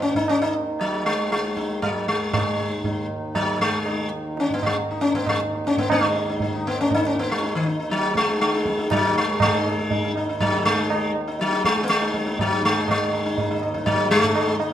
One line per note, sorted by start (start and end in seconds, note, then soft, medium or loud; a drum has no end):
0.00 5.90 D#2 medium
0.00 5.90 D#3 medium
0.00 0.16 C#4 medium
0.00 tabla te medium
0.15 0.29 D#4 medium
0.15 tabla ge medium
0.28 0.41 C#4 loud
0.28 tabla na medium
0.42 0.54 D#4 medium
0.54 tabla na medium
0.80 1.06 F#3 medium
0.80 tabla na medium
1.05 1.31 G#3 medium
1.05 tabla na medium
1.31 1.82 G#3 medium
1.31 tabla te medium
1.44 tabla te medium
1.57 1.81 D#4 soft
1.57 tabla ke medium
1.70 tabla te medium
1.82 2.08 F#3 medium
1.82 tabla na medium
1.82 tabla ge medium
2.08 2.32 G#3 medium
2.08 tabla te medium
2.33 3.07 G#3 medium
2.33 tabla na loud
2.33 tabla ge medium
2.59 2.83 D#4 soft
2.84 3.09 D#4 soft
2.84 tabla tin medium
2.84 tabla ge medium
3.35 3.61 F#3 medium
3.35 tabla na medium
3.35 tabla ge medium
3.60 4.09 G#3 medium
3.60 tabla ge medium
3.86 4.11 D#4 soft
3.86 tabla na medium
4.37 4.52 C#4 medium
4.37 tabla te medium
4.50 4.65 B3 medium
4.50 tabla tin medium
4.50 tabla ge medium
4.63 4.77 G#3 medium
4.63 tabla na medium
4.63 tabla ge medium
4.91 5.14 D#4 soft
5.01 5.14 C#4 medium
5.01 tabla te medium
5.14 5.28 B3 medium
5.14 tabla tin medium
5.14 tabla ge medium
5.26 5.40 G#3 medium
5.26 tabla na loud
5.26 tabla ge medium
5.65 5.78 C#4 medium
5.65 tabla te medium
5.77 5.91 B3 medium
5.77 tabla tin medium
5.77 tabla ge medium
5.90 14.73 D#2 medium
5.90 14.73 D#3 medium
5.90 6.63 G#3 medium
5.90 6.04 D#4 soft
5.90 tabla na loud
5.90 tabla ge medium
6.05 6.14 D#4 soft
6.16 6.28 D#4 soft
6.29 6.41 D#4 soft
6.40 6.54 D#4 soft
6.40 tabla tin medium
6.40 tabla ge medium
6.55 6.78 D#4 soft
6.67 6.78 B3 medium
6.81 6.93 C#4 medium
6.91 7.05 D#4 loud
6.91 tabla na medium
6.91 tabla ge medium
7.07 7.18 C#4 medium
7.16 7.31 B3 medium
7.16 tabla te medium
7.28 7.55 G#3 medium
7.28 tabla ge medium
7.41 7.65 D#4 soft
7.41 tabla te medium
7.55 7.66 D#3 medium
7.66 7.78 D#4 soft
7.66 tabla te medium
7.80 8.03 D#4 soft
7.90 8.17 F#3 medium
7.90 tabla te medium
8.03 tabla te medium
8.15 8.40 G#3 loud
8.15 tabla ke medium
8.28 8.53 D#4 soft
8.28 tabla te medium
8.41 8.88 G#3 loud
8.41 tabla te medium
8.53 8.66 D#4 soft
8.53 tabla te medium
8.66 8.78 D#4 soft
8.66 tabla ke medium
8.79 9.02 D#4 soft
8.79 tabla te medium
8.91 9.17 F#3 loud
8.91 tabla na medium
8.91 tabla ge medium
9.05 9.28 D#4 soft
9.16 9.41 G#3 medium
9.16 tabla ge medium
9.40 10.12 G#3 loud
9.40 tabla na loud
9.40 tabla ge loud
9.54 9.66 D#4 soft
9.68 9.78 D#4 soft
9.79 9.90 D#4 soft
9.90 10.03 D#4 soft
9.90 tabla tin medium
9.90 tabla ge medium
10.04 10.16 D#4 soft
10.16 10.28 D#4 soft
10.16 tabla na medium
10.29 10.52 D#4 soft
10.40 10.65 F#3 medium
10.40 tabla na medium
10.40 tabla ge medium
10.53 10.76 D#4 soft
10.65 11.12 G#3 loud
10.65 tabla ge medium
10.78 10.88 D#4 soft
10.90 11.13 D#4 soft
10.90 tabla na medium
11.15 tabla na medium
11.28 11.51 D#4 soft
11.40 11.65 F#3 medium
11.40 tabla te medium
11.52 11.75 D#4 soft
11.52 tabla te medium
11.65 11.84 G#3 loud
11.65 tabla ke medium
11.77 tabla te medium
11.83 11.89 B3 medium
11.89 12.40 G#3 loud
11.89 tabla te medium
12.01 12.13 D#4 soft
12.01 tabla te medium
12.14 12.25 D#4 soft
12.14 tabla ke medium
12.26 12.49 D#4 soft
12.26 tabla te medium
12.39 12.65 F#3 medium
12.39 tabla na medium
12.39 tabla ge medium
12.53 12.75 D#4 soft
12.64 12.90 G#3 loud
12.64 tabla te medium
12.77 12.99 D#4 soft
12.88 13.59 G#3 medium
12.88 tabla na loud
12.88 tabla ge medium
13.13 13.24 D#4 soft
13.25 13.38 D#4 soft
13.38 13.50 D#4 soft
13.38 tabla tin medium
13.38 tabla ge medium
13.51 13.62 D#4 soft
13.62 13.73 D#4 soft
13.62 tabla na medium
13.74 13.97 D#4 soft
13.74 tabla ke medium
13.86 14.09 F#3 medium
13.86 tabla na medium
13.86 tabla ge medium
14.00 14.22 D#4 soft
14.11 14.56 G#3 loud
14.11 tabla te medium
14.23 14.35 D#4 soft
14.23 tabla ge medium
14.35 14.45 D#4 soft
14.35 tabla na medium
14.46 14.58 D#4 soft
14.59 14.71 D#4 soft
14.59 tabla na medium